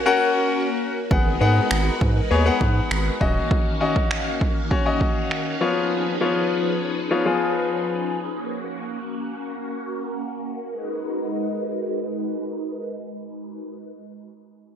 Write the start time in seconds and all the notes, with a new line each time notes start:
Already playing: A#3 C#4 F#4
0.06 C#4 F#4 A#4 F#5
1.11 G#1 G#3 B3 D#4 F#4 G#4 A#4 B4 F#5, kick
1.26 G#1
1.41 G#2 B3 G#4 F#5
1.71 G#1, finger snap
2.01 G#2, kick
2.31 D#2 B3 G#4 C#5
2.46 B3 G#4 F#5
2.61 G#2, kick
2.91 G#1, finger snap
3.21 D#1 D#3 A#3 C#4 F#4 D#5 F5, kick
3.51 kick
3.81 C#4 F#4 D#5
3.96 kick
4.11 finger snap
4.41 kick
4.71 C#4 F#4 C#5, kick
4.86 C#4 F#4 D#5
5.01 kick
5.31 finger snap
5.61 F3 B3 D#4 F4 G#4 B4 C#5
6.21 F3 B3 F4 C#5
7.11 F3 B3 F4 C#5
7.26 F3 B3 F4 G#4
8.31 A#3 C#4 F#4
10.71 G#3 D#4 F#4 A#4 B4